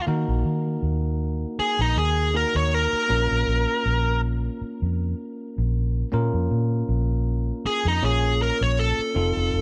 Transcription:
0.07 0.24 D#3 medium
0.07 2.30 A#3 medium
0.07 2.30 D#4 medium
0.07 2.31 F#4 medium
0.07 2.31 A#4 medium
0.28 0.42 A#1 medium
0.45 0.76 D#3 medium
0.83 1.44 D#2 medium
1.59 1.79 G#4 loud
1.59 muted fingered electric bass stroke soft
1.79 1.93 A#1 medium
1.79 1.97 D#4 medium
1.96 2.44 D#2 loud
1.96 2.34 G#4 medium
2.34 3.07 A#3 soft
2.34 3.10 D#4 soft
2.34 3.10 F#4 soft
2.34 3.09 A#4 soft
2.34 2.56 A#4 medium
2.55 2.86 D#2 medium
2.55 2.74 C#5 medium
2.74 4.21 A#4 medium
2.93 muted fingered electric bass stroke soft
3.09 3.27 A#1 medium
3.09 6.08 A#3 medium
3.09 6.09 C#4 medium
3.09 6.09 F4 medium
3.09 6.09 A#4 medium
3.31 3.45 A#1 medium
3.47 3.65 A#1 medium
3.86 4.47 A#1 medium
4.61 muted fingered electric bass stroke soft
4.82 5.13 F2 medium
5.58 6.03 A#1 loud
6.12 6.30 A#2 medium
6.12 7.98 A#3 medium
6.12 7.98 C#4 medium
6.12 7.99 F4 medium
6.12 7.99 A#4 medium
6.34 6.48 F2 medium
6.51 6.82 A#2 medium
6.89 7.50 A#1 medium
7.65 7.86 G#4 medium
7.65 muted fingered electric bass stroke soft
7.85 7.99 F2 medium
7.85 8.03 D#4 medium
8.02 8.50 A#1 medium
8.02 9.16 A#3 soft
8.02 9.16 C#4 soft
8.02 9.15 F4 soft
8.02 8.40 G#4 medium
8.02 9.16 C#5 medium
8.42 8.61 A#4 medium
8.61 8.92 A#1 medium
8.61 8.78 C#5 medium
8.79 9.62 A4 medium
8.99 muted fingered electric bass stroke soft
9.15 9.33 F1 medium
9.15 9.62 C4 medium
9.15 9.62 D#4 medium
9.15 9.62 F4 medium
9.15 9.62 A4 medium
9.37 9.51 F1 medium
9.53 9.62 F1 medium

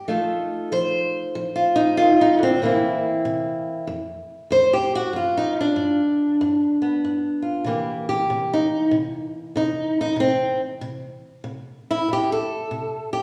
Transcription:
0.08 0.67 F3 medium
0.08 1.97 A3 soft
0.08 1.74 D#4 soft
0.08 1.54 F4 soft
0.08 0.72 A4 soft
0.72 1.31 F3 medium
0.72 2.20 C5 loud
1.35 1.94 F3 medium
1.56 1.96 F4 medium
1.76 2.19 D#4 medium
1.97 2.38 D#3 medium
1.97 2.61 F4 medium
2.21 2.42 D#4 medium
2.39 2.62 D3 medium
2.43 2.62 C4 medium
2.62 3.20 C3 medium
2.62 3.86 E3 medium
2.62 3.86 A#3 medium
2.62 3.86 C4 medium
2.62 3.90 E4 medium
3.25 3.84 C3 medium
3.87 4.46 F2 medium
4.50 5.10 F2 medium
4.50 4.73 C5 loud
4.73 4.94 G4 medium
4.95 5.15 F#4 medium
5.13 5.72 G2 medium
5.13 6.00 F4 medium
5.37 5.58 D#4 medium
5.60 7.69 D4 medium
5.76 6.35 G2 medium
6.41 6.99 G2 medium
6.82 7.65 B3 soft
7.04 7.63 G2 medium
7.42 7.63 F4 soft
7.64 8.24 C3 medium
7.64 11.16 E3 soft
7.64 10.19 A#3 soft
7.64 8.08 G4 soft
8.09 8.51 G4 medium
8.30 8.89 C3 medium
8.53 8.94 D#4 medium
8.91 9.51 C3 medium
9.56 10.14 C3 medium
9.56 9.99 D#4 medium
10.01 10.20 D#4 medium
10.16 10.76 C3 medium
10.16 10.60 C4 medium
10.81 11.40 C3 medium
11.44 12.03 C3 medium
11.91 12.10 E4 loud
12.08 12.67 C3 medium
12.13 12.32 G4 medium
12.32 13.12 A4 medium
12.71 13.22 C3 medium
13.13 13.22 G4 medium

